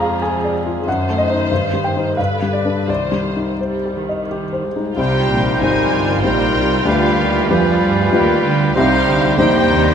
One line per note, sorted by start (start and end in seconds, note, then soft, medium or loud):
0.00 0.84 F2 soft
0.00 0.87 F3 soft
0.00 0.89 G#3 soft
0.00 0.66 F4 soft
0.00 0.14 G#4 soft
0.00 0.86 G#4 medium
0.00 0.44 D5 soft
0.00 0.36 F5 soft
0.00 0.19 A#5 medium
0.00 0.89 D6 medium
0.22 0.57 G#4 soft
0.22 0.52 G#5 soft
0.44 0.78 D5 soft
0.66 0.87 F4 soft
0.86 1.48 F#2 soft
0.86 2.15 D#3 soft
0.86 2.18 C5 soft
0.86 1.17 F#5 medium
1.08 1.42 A3 soft
1.18 1.80 D#5 medium
1.30 1.49 D#4 soft
1.30 1.49 C5 soft
1.51 2.17 G2 soft
1.74 2.09 G3 soft
1.84 2.16 G5 medium
1.96 2.16 D#4 soft
1.96 2.17 C5 soft
2.17 2.87 G2 soft
2.17 2.88 D3 soft
2.17 2.87 B4 soft
2.17 2.50 F5 medium
2.42 2.79 G3 soft
2.53 2.86 D5 medium
2.65 2.86 D4 soft
2.65 2.86 B4 soft
2.88 4.94 C2 soft
2.88 3.54 D#3 soft
2.88 3.54 C5 soft
2.88 3.57 D5 medium
3.12 3.51 G3 soft
3.36 3.75 D#4 soft
3.60 3.94 G3 soft
3.60 4.26 C5 soft
3.85 4.22 G4 soft
3.95 4.64 D#3 soft
4.09 4.45 D#5 soft
4.31 4.68 G4 soft
4.53 4.89 C5 soft
4.64 4.98 G#3 soft
4.76 4.98 D#4 soft
4.97 5.28 C2 soft
4.97 6.81 C3 soft
4.97 5.28 C3 soft
4.97 6.19 G3 soft
4.97 5.57 G3 soft
4.97 8.72 G3 soft
4.97 6.82 D#4 soft
4.97 6.19 D#4 soft
4.97 8.72 F4 soft
4.97 5.57 G4 soft
4.97 5.58 C5 soft
4.97 6.20 C5 soft
4.97 5.57 G5 medium
4.97 6.20 G6 soft
5.30 5.61 A#1 soft
5.30 5.61 A#2 soft
5.61 5.92 G#1 soft
5.61 5.92 G#2 soft
5.61 6.22 F3 soft
5.61 6.20 G3 soft
5.61 6.19 D#4 soft
5.61 6.22 A#4 soft
5.61 6.83 C5 soft
5.61 6.20 C5 soft
5.61 6.24 G#5 medium
5.92 6.23 G1 soft
5.92 6.23 G2 soft
6.22 6.54 A#1 soft
6.22 6.55 A#2 soft
6.22 6.85 G3 soft
6.22 6.86 G3 soft
6.22 6.83 G3 soft
6.22 6.88 D#4 soft
6.22 6.83 D#4 soft
6.22 6.85 A#4 soft
6.22 6.88 C5 soft
6.22 6.83 C5 soft
6.22 6.84 G5 medium
6.22 6.85 G6 soft
6.55 6.85 C2 soft
6.55 6.86 C3 soft
6.85 7.16 D2 soft
6.85 7.17 D2 soft
6.85 8.72 D3 soft
6.85 7.18 D3 soft
6.85 7.49 G3 soft
6.85 7.49 F4 soft
6.85 8.73 F4 soft
6.85 7.49 G4 soft
6.85 8.13 B4 soft
6.85 7.48 B4 soft
6.85 7.49 F5 medium
6.85 7.48 G6 soft
7.18 7.49 D#2 medium
7.18 7.49 D#3 soft
7.48 7.81 F2 soft
7.48 7.82 F3 soft
7.48 8.13 F3 medium
7.48 8.74 G3 medium
7.48 8.09 G3 soft
7.48 8.74 F4 soft
7.48 8.09 F4 soft
7.48 8.14 G#4 soft
7.48 8.73 B4 soft
7.48 8.10 B4 soft
7.48 8.42 D5 medium
7.48 8.74 G6 soft
7.81 8.12 G2 soft
7.81 8.13 G3 soft
8.12 8.44 D#2 soft
8.12 8.45 D#3 medium
8.12 8.72 G3 soft
8.12 8.75 G3 soft
8.12 8.72 F4 soft
8.12 8.77 G4 soft
8.12 8.73 B4 soft
8.12 8.76 B4 soft
8.44 8.75 D2 medium
8.44 8.75 D3 soft
8.74 9.07 C2 medium
8.74 9.06 C3 medium
8.74 9.94 C3 medium
8.74 9.37 G3 medium
8.74 9.37 G3 soft
8.74 9.94 G3 medium
8.74 9.36 D#4 medium
8.74 9.39 D#4 soft
8.74 9.94 D#4 medium
8.74 9.36 C5 medium
8.74 9.94 C5 medium
8.74 9.33 F5 medium
8.74 9.38 G6 soft
8.78 9.94 G4 soft
9.06 9.38 D2 medium
9.06 9.38 D3 soft
9.37 9.70 F2 medium
9.37 9.69 F3 medium
9.37 9.94 G3 medium
9.37 9.94 G3 soft
9.37 9.94 A#3 medium
9.37 9.94 D4 medium
9.37 9.94 D#4 medium
9.37 9.94 D#4 soft
9.37 9.94 C5 medium
9.37 9.94 C5 soft
9.37 9.94 G5 medium
9.37 9.94 G6 medium
9.70 9.94 D#2 medium
9.70 9.94 D#3 medium